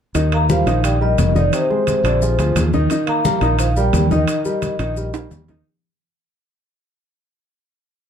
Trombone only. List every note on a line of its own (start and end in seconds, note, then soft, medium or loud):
0.33 0.49 A#3 medium
0.49 0.82 F3 medium
0.84 1.00 G3 medium
1.01 1.33 D#3 medium
1.35 1.43 D3 medium
1.52 1.84 C3 medium
1.86 2.51 C3 medium
3.07 3.55 A#3 medium
3.60 3.67 F3 medium
3.77 4.09 G3 medium
4.11 5.27 D#3 medium